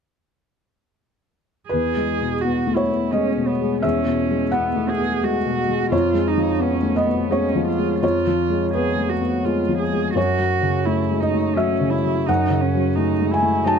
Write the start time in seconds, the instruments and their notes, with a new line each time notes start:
1.69 felt piano E2 B4, cello G#4
1.97 felt piano G#3
2.21 felt piano B2
2.41 felt piano B3, cello F#4
2.67 felt piano A3
2.76 cello E4, felt piano C#5
2.90 felt piano B3
3.12 felt piano G#3 D#5, cello C#4
3.37 felt piano B2
3.48 cello B3
3.61 felt piano G#3
3.82 felt piano E2 E5, cello C#4
4.06 felt piano B2
4.31 felt piano G#3
4.52 felt piano B3 F#5, cello B3
4.75 felt piano A3
4.90 cello G#4
4.98 felt piano B3
5.23 felt piano G#3, cello F#4
5.46 felt piano B2
5.68 felt piano G#3
5.92 felt piano F2 C#5, cello F4
6.14 felt piano G#3
6.28 cello D#4
6.37 felt piano F3
6.60 felt piano B3, cello C#4
6.83 felt piano A3
6.96 cello B3, felt piano D#5
7.06 felt piano B3
7.30 felt piano G#3 C#5, cello C#4
7.55 felt piano F3
7.68 cello F4
7.78 felt piano G#3
8.02 felt piano F2 C#5, cello F4
8.27 felt piano F3
8.50 felt piano G#3
8.74 felt piano B3 B4, cello G#4
8.97 felt piano A3
9.09 cello F#4
9.21 felt piano B3
9.45 felt piano G#3, cello F4
9.69 felt piano F3
9.79 cello G#4
9.92 felt piano G#3
10.15 felt piano F#2 C#5, cello F#4
10.39 felt piano F#3
10.62 felt piano C#3
10.86 felt piano A3, cello E4
11.11 felt piano G#3
11.20 cello D#4, felt piano D#5
11.34 felt piano A3
11.56 felt piano F#3 E5, cello C#4
11.80 felt piano C#3
11.91 cello E4
12.04 felt piano F#3
12.27 felt piano F#2 F#5, cello D#4
12.50 felt piano C#3
12.61 cello C#4
12.75 felt piano F#3
12.96 felt piano A3, cello D#4
13.21 felt piano G#3
13.32 cello E4, felt piano G#5
13.43 felt piano A3
13.65 felt piano F#3 A5, cello D#4